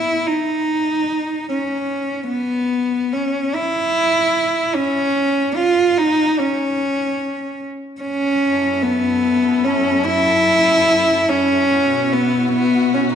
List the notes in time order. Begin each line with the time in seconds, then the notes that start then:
Already playing: E4
0.27 D#4
1.49 C#4
2.28 B3
3.13 C#4
3.55 E4
4.75 C#4
5.56 F4
5.98 D#4
6.39 C#4
8.02 C#4
8.43 F#2 F#3 E4 A4
8.82 B3
9.64 C#4
10.05 E4
11.29 C#4
11.67 B2 B3 E4 F#4
12.12 B3
12.53 B3
12.94 C#4